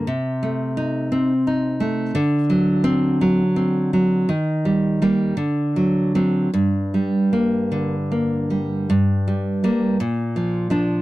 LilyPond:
\new Staff \with { instrumentName = "Nylon-string guitar" } { \clef bass \time 6/8 \key g \minor \tempo 4. = 55 << { r4 ees'4 r4 | r4 c'4 r4 | r4 bes8 r4 c'8 | r4 bes4 r4 |
r4 bes8 r4 d'8 | } \\ { c8 a4 c'8 ees'8 a8 | d8 fis4 fis8 c'8 fis8 | ees8 g8 g8 d8 fis8 fis8 | g,8 g4 d8 bes8 g8 |
g,8 g8 g8 bes,8 f8 f8 | } >> }